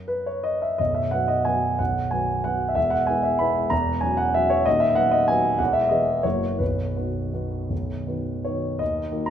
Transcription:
grand piano
Already playing: F#2 F#3 C#4 F#4 A#4
0.08 B4
0.26 C#5
0.44 D#5
0.62 E5
0.78 B0 B1 D#5
0.95 E5
1.11 F#3 B3 F#4 F#5
1.28 D#5
1.45 F#3 B3 F#4 G#5
1.79 B0 B1 F#5
2.11 F#3 B3 F#4 G#5
2.44 F#3 B3 F#4 F#5
2.68 E5
2.75 E1 E2 E5
2.90 F#5
3.07 G#3 B3 E4 G#5
3.23 E5
3.39 G#3 B3 E4 B5
3.70 E1 E2 A#5
4.01 F#3 C#4 F#4 G#5
4.17 F#5
4.34 F#3 C#4 F#4 E5
4.50 C#5
4.66 D#1 D#2 D#5
4.80 E5
4.95 F#3 B3 F#4 F#5
5.11 D#5
5.28 F#3 B3 F#4 G#5
5.58 E1 E2 F#5
5.73 E5
5.89 E3 B3 G#4 D#5
6.23 F#1 F#2 E3 A#3 F#4 C#5
6.59 B0 B1 B4
6.96 D#3 B3 F#4
7.33 D#3 B3 F#4
7.70 B0 B1
8.07 D#3 B3 F#4
8.44 D#3 B3 F#4 C#5
8.79 D#2 D#5
9.12 D#3 A#3 F#4
9.26 A#5

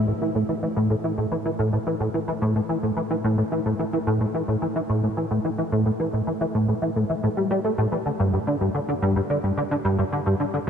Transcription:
analog synth bass
0.08 A2
0.22 E3
0.35 A2
0.49 E3
0.63 E3
0.77 A2
0.90 A2
1.04 E3
1.18 A2
1.32 E3
1.45 E3
1.59 A2
1.73 A2
1.87 E3
2.00 A2
2.14 E3
2.28 E3
2.42 A2
2.56 A2
2.69 E3
2.83 A2
2.97 E3
3.10 E3
3.24 A2
3.38 A2
3.52 E3
3.66 A2
3.79 E3
3.93 E3
4.07 A2
4.21 A2
4.34 E3
4.48 A2
4.62 E3
4.76 E3
4.90 A2
5.03 A2
5.17 E3
5.31 A2
5.45 E3
5.58 E3
5.72 A2
5.86 A2
6.00 E3
6.13 A2
6.27 E3
6.41 E3
6.55 A2
6.68 A2
6.82 E3
6.96 A2
7.10 E3
7.23 A2
7.37 G3
7.51 G3
7.64 A3
7.78 A2
7.92 E3
8.06 D3
8.20 G2
8.33 G2
8.47 D3
8.61 G2
8.75 D3
8.89 D3
9.02 G2
9.16 G2
9.30 D3
9.44 G2
9.57 D3
9.71 D3
9.85 G2
9.99 G2
10.13 D3
10.26 G2
10.40 D3
10.54 D3

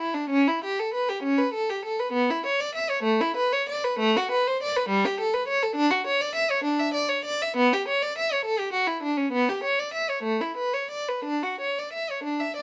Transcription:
violin
Already playing: E4
0.14 D4
0.30 C#4
0.48 E4
0.64 G4
0.80 A4
0.94 B4
1.09 G4
1.23 C#4
1.38 B4
1.54 A4
1.70 G4
1.85 A4
2.00 B4
2.13 B3
2.30 E4
2.46 C#5
2.60 D5
2.75 E5
2.90 C#5
3.03 A3
3.21 E4
3.37 B4
3.53 C#5
3.69 D5
3.85 B4
3.99 A3
4.17 F#4
4.31 B4
4.47 C5
4.62 D5
4.77 B4
4.89 G3
5.05 G4
5.20 A4
5.33 B4
5.48 C#5
5.63 A4
5.76 D4
5.91 F#4
6.07 C#5
6.21 D5
6.35 E5
6.50 C#5
6.64 D4
6.80 E5
6.94 D5
7.09 C#5
7.25 D5
7.42 E5
7.57 B3
7.73 G4
7.88 C#5
8.03 D5
8.18 E5
8.33 C#5
8.45 A4
8.59 G4
8.73 F#4
8.87 E4
9.03 D4
9.17 C#4
9.32 B3
9.49 G4
9.64 C#5
9.79 D5
9.94 E5
10.09 C#5
10.23 A3
10.41 E4
10.57 B4
10.74 C#5
10.91 D5
11.08 B4
11.25 D4
11.43 F#4
11.61 C#5
11.79 D5
11.93 E5
12.10 C#5
12.24 D4
12.40 E5
12.57 D5

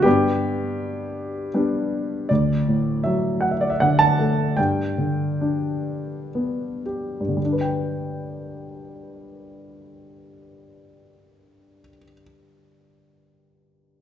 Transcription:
grand piano
0.02 G2 B3 G4
1.54 G3 B3 D4
2.29 D2 D5
2.68 A2
3.04 F#3 E5
3.41 F#5
3.51 E5
3.61 D5
3.70 E5
3.80 D3 F#5
3.99 A5
4.19 A3
4.57 G2 G5
4.98 D3
5.41 D4
6.35 B3
6.86 G4
7.20 G2
7.29 D3
7.37 G3
7.45 D4
7.53 B4
7.61 G5

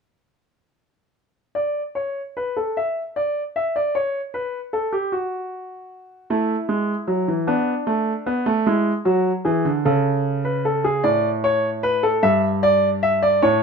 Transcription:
grand piano
1.55 D5
1.95 C#5
2.37 B4
2.57 A4
2.77 E5
3.16 D5
3.56 E5
3.76 D5
3.95 C#5
4.34 B4
4.73 A4
4.93 G4
5.12 F#4
6.30 A3 E4
6.69 G#3
7.07 F#3
7.28 E3
7.47 B3 D4
7.87 A3
8.26 B3
8.46 A3
8.66 G#3 E4
9.05 F#3 F#4
9.45 E3 G#4
9.65 D3
9.85 C#3 A4
10.45 B4
10.65 A4
10.84 G#4
11.04 A2 D5
11.44 C#5
11.83 B4
12.03 A4
12.23 G2 E5
12.63 D5
13.03 E5
13.22 D5
13.42 A2 C#5

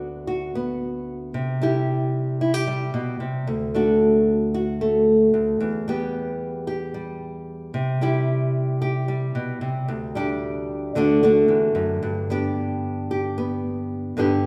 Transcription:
nylon-string guitar
Already playing: D2 B3 D4 F#4
0.27 F#4
0.55 B3
1.34 C3
1.61 G3 E4 G4
2.41 E4
2.54 G4
2.67 G3
2.94 B2
3.20 C3
3.47 D2
3.74 A3 D4 F#4
4.54 F#4
4.81 A3
5.34 D2
5.60 E2
5.88 G3 B3 G4
6.67 G4
6.94 G3
7.74 C3
8.01 G3 E4 G4
8.82 G4
9.08 G3
9.35 B2
9.61 C3
9.88 D2
10.15 G3 D4 G4
10.95 D2 D3 A3 D4 F#4
11.23 A3 D4 F#4
11.48 E2
11.75 F#2
12.03 G2
12.30 B3 D4 G4
13.11 G4
13.38 B3
14.17 G2 D3 B3 D4 G4

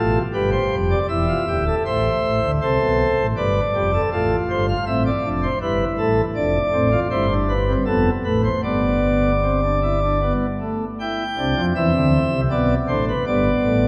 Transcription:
pipe organ
Already playing: A1 A2 F4 A4
0.33 G1 G2 G4 B4
0.52 C5
0.71 F1 F2
0.90 D5
1.09 E1 E2 E4 E5
1.28 F4
1.48 D1 D2 G4
1.66 A4
1.86 A1 A2 C5 E5
2.23 A1 A2
2.42 D2 D3
2.61 C2 C3 A4 C5
2.80 B1 B2
3.17 A1 A2
3.37 G1 G2 B4 D5
3.74 F1 F2 G4
3.93 A4
4.12 A1 A2 F4 A4
4.50 G1 G2 C5
4.69 F5
4.87 A1 A2 C4 E5
5.06 D5
5.24 F1 F2 D4
5.43 C5
5.61 G1 G2 E4 B4
5.98 A1 A2 A4
6.35 F1 F2 D4 D5
6.73 A1 A2 C4
6.92 F4
7.11 G1 G2 E4 C5
7.30 D4
7.49 B4
7.68 C4
7.86 F1 F2 B3 A4
8.24 A1 A2 A3 B4
8.44 C5
8.63 G1 G2 B3 D5
9.43 C4
9.63 D4
9.82 E4
10.03 D4
10.22 B3
10.61 A3
11.00 E4 G5
11.37 C2 C3 D4
11.56 F2 F3
11.76 E2 E3 C4 E5
11.94 D2 D3
12.32 C2 C3
12.51 B1 B2 B3 D5
12.88 A1 A2 D4 C5
13.08 B4
13.27 G1 G2 B3 D5
13.64 A1 A2

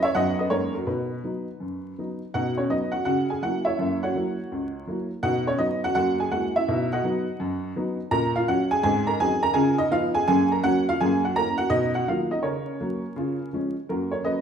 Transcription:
upright piano
0.03 C#5 E5
0.15 F#2 F#3 B3 D#4 D#5 F#5
0.39 B4 D#5
0.50 F#2 G#3 A#3 D#4 A#4 C#5
0.75 F#4 A#4
0.87 B2 D#4 F#4 B4
1.24 F#3 B3 D#4
1.60 F#2
1.98 F#3 B3 D#4
2.34 B2 D#4 F#4 F#5
2.57 C#4 C#5
2.70 F#3 B3 D#4 D#5
2.92 F#4 F#5
3.05 C#3 F#4 F#5
3.30 G#4 G#5
3.42 F#3 A#3 E4 F#4 F#5
3.65 E4 C#5 E5
3.79 F#2 A#3
4.03 F#4 C#5 F#5
4.15 F#3 A#3 E4
4.52 C#2
4.87 F#3 A#3 E4
5.23 B2 D#4 F#4 F#5
5.47 C#4 C#5
5.58 F#3 B3 D#4 D#5
5.84 F#4 F#5
5.95 F#2 A#3 F#4 F#5
6.20 G#4 G#5
6.32 G#3 A#3 E4 F#4 F#5
6.56 E4 E5
6.68 B2 D#4
6.93 F#4 D#5 F#5
7.04 F#3 B3 D#4
7.40 F#2
7.76 F#3 B3 D#4
8.11 A#2 A#4 A#5
8.36 F4 F5
8.48 F#3 C#4 F#4 F#5
8.71 G#4 G#5
8.83 G#2 C4 G#4 G#5
9.07 A#4 A#5
9.20 F#3 C4 D#4 G#4 G#5
9.43 A#4 A#5
9.54 C#3 F4 G#4 G#5
9.78 D#4 D#5
9.91 F3 B3 D#4 F4 F5
10.15 G#4 G#5
10.28 F#2 A#3 G#4 G#5
10.52 A#4 A#5
10.64 F#3 A#3 C#4 F#4 F#5
10.89 F4 F5
11.01 F#2 A#3 G#4 G#5
11.25 F#4 F#5
11.36 E3 A#3 C#4 A#4 A#5
11.58 F#4 F#5
11.70 B2 D#4 D#5
11.95 F#4 F#5
12.08 D#3 F#3 A#3 F4 F5
12.31 D#4 D#5
12.43 C#3 C#4 A#4 C#5
12.81 F#3 A#3
13.16 C#3 F4
13.53 F3 G#3 C#4
13.89 F#2 A#3 F#4 A#4
14.11 A#4 C#5
14.24 F#3 A#3 C#4 B4 D#5

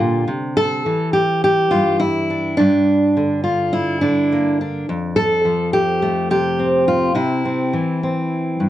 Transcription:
steel-string acoustic guitar
Already playing: D3 F4 G4
0.00 A#2
0.28 C3
0.57 A4
0.86 E3
1.13 G4
1.44 G4
1.71 G2 F4
2.00 E4
2.30 D4
2.57 G2 D4
3.17 D3
3.44 F4
3.73 E4
4.01 D3 D4
4.32 A#3
4.61 D4
4.89 F2
5.16 A4
5.45 F3
5.73 G4
6.02 A3
6.30 C3 G4
6.59 C4
6.88 F4
7.15 C3 E4
7.45 C4
7.73 E3
8.03 C4
8.60 G2

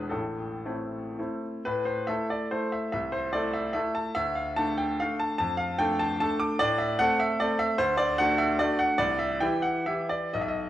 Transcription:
grand piano
Already playing: E1 E2 G#3 D4 E4 B4
0.09 A1 A2 A4
0.66 A3 C4 E4
1.19 A3 C4 E4
1.65 A2 B4
1.86 C5
2.07 A3 E4 A4 E5
2.30 D5
2.51 A3 E4 A4 C5
2.72 E5
2.92 C2 E5
3.12 C5
3.33 A3 E4 A4 D5
3.53 E5
3.73 A3 E4 A4 E5
3.95 A5
4.15 D2 E5
4.35 F5
4.57 A3 D4 A4 A5
4.78 G5
5.00 A3 D4 A4 F5
5.20 A5
5.38 F2 A5
5.57 F5
5.79 A3 D4 A4 G5
6.00 A5
6.20 A3 D4 A4 A5
6.39 D6
6.59 A2 D5
6.78 E5
6.99 A3 C4 A4 F#5
7.19 E5
7.40 A3 C4 A4 D5
7.59 E5
7.78 D2 C5
7.97 D5
8.18 A3 D4 F#4 F#5
8.38 E5
8.59 A3 D4 F#4 D5
8.79 F#5
8.98 C2 D5
9.19 E5
9.40 E3 E4 G4 G5
9.62 F#5
9.86 E3 E4 G4 E5
10.09 D5
10.33 B1 D#5
10.41 E5
10.48 D#5

